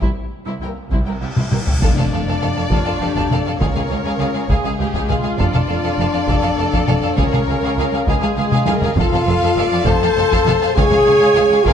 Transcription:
0.00 C2 E4 C5, taiko, cymbal swell
0.45 C2 E4 C5
0.61 C2 E3 A#3 E4 A#4 G5
0.91 C2 E4 C5, taiko
1.06 C2 E4 A#4 G5
1.20 C2 E4 G4 E5
1.36 C2 E4 C5, taiko mid
1.50 C2 E3 A#3 E4 A#4 G5, taiko mid
1.66 C2 E4 G4 E5, taiko low
1.80 F1 F2 D4 A4 D5 F5, taiko, impact
1.98 F2 A4 F5, taiko mid
2.11 F1 F2 A4 F5
2.28 F2 A4 F5
2.42 F1 F2 A4 F5
2.56 F2 A4 F5
2.70 F1 F2 F4 A4 F5, taiko
2.86 F2 A4 F5
3.01 F1 F2 G4 A4 F5
3.16 F2 A4 F5, taiko
3.30 F1 F2 A4 F5, taiko mid
3.46 F2 A4 F5
3.60 C#2 C#4 G#4 A#4 C#5 F5, taiko
3.75 C#2 G#4 F5, taiko mid
3.89 C#2 G#4 F5
4.05 C#2 G#4 F5
4.19 C#2 G#4 F5
4.34 C#2 G#4 F5
4.49 C#2 G#3 G#4 F5, taiko
4.64 C#2 G#4 F5
4.79 C#2 G4 G#4 F5
4.94 C#2 G#4 F5, taiko
5.09 C#2 F4 G#4 F5, taiko mid
5.24 C#2 G#4 F5
5.38 F1 F2 D4 A4 D5 F5, taiko
5.54 F2 A4 F5, taiko mid
5.68 F1 F2 A4 F5
5.83 F2 A4 F5
5.98 F1 F2 A4 F5
6.13 F2 A4 F5
6.27 F1 F2 A4 F5, taiko
6.42 F2 A4 F5
6.58 F1 F2 A4 F5
6.73 F2 A4 F5, taiko
6.88 F1 F2 A4 F5, taiko mid
7.03 F2 A4 F5
7.17 C#2 C#4 G#4 A#4 C#5 F5, taiko
7.33 C#2 G#4 F5, taiko mid
7.47 C#2 G#4 F5
7.62 C#2 G#4 F5
7.76 C#2 G#4 F5
7.92 C#2 G#4 F5
8.06 C#2 G#3 G#4 F5, taiko
8.22 C#2 G#4 F5
8.37 C#2 G#4 F5
8.52 C#2 G#4 F5, taiko mid
8.66 C#2 G#4 A#4 F5, taiko high
8.82 C#2 G#4 F5, taiko low
8.96 F1 F2 F4 A4 F5, taiko
9.12 F2 A4 F5, taiko mid
9.26 F1 F2 A4 F5
9.42 F2 A4 F5
9.57 F1 F2 A4 D5 F5
9.72 F2 A4 F5
9.85 F1 F2 A4 C5 F5 A5, taiko
10.01 F2 A4 F5
10.16 F1 F2 A4 F5
10.32 F2 A4 F5, taiko
10.46 F1 F2 A4 F5, taiko mid
10.61 F2 A4 F5
10.74 C#2 G#4 C#5 F5 G#5, taiko
10.91 C#2 G#4 F5, taiko mid
11.06 C#2 G#4 F5
11.20 C#2 G#4 F5
11.35 C#2 G#4 F5
11.51 C#2 G#4 F5
11.64 C#2 F4 G#4 A#4 F5, taiko

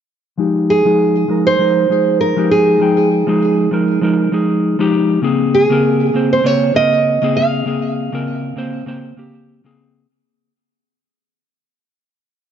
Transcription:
0.38 F3 G#3 D#4 G4
0.70 G#4
0.85 F3 G#3 D#4 G#4
1.28 F3 G#3 D#4 A#4
1.47 C5
1.59 F3 G#3 D#4 A#4
1.89 F3 G#3 D#4 G#4
2.21 A#4
2.36 F3 G#3 D#4 G4
2.51 G#4
2.80 F3 G#3 D#4 G5
3.27 F3 G#3 D#4 G#4
3.71 F3 G#3 D#4 A#4
4.01 F3 G#3 D#4 A#4
4.32 F3 G#3 D#4 G#4
4.79 F3 G#3 D#4 G4
5.22 C#3 A#3 C4 G#4
5.55 G#4
5.70 C#3 A#3 C4 A#4
6.14 C#3 A#3 C4 C5
6.33 C5
6.44 C#3 A#3 C4 C5 C#5
6.74 C#3 A#3 C4 A#4 D#5
7.22 C#3 A#3 C4 G#4
7.37 F5
7.65 C#3 A#3 C4 G#4
8.12 C#3 A#3 C4 A#4
8.56 C#3 A#3 C4 C5
8.86 C#3 A#3 C4 C5
9.16 C#3 A#3 C4 G4
9.64 C#3 A#3 C4 G#4

